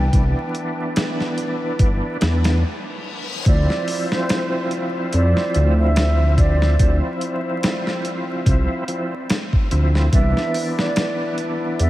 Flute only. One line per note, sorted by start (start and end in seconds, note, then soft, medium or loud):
0.00 0.30 G5 medium
3.47 4.05 D5 medium
4.12 4.66 C5 medium
5.14 5.71 D5 medium
5.78 6.33 E5 medium
6.38 6.96 D5 loud
10.13 10.71 E5 loud
10.79 11.33 D5 medium
11.80 11.90 E5 loud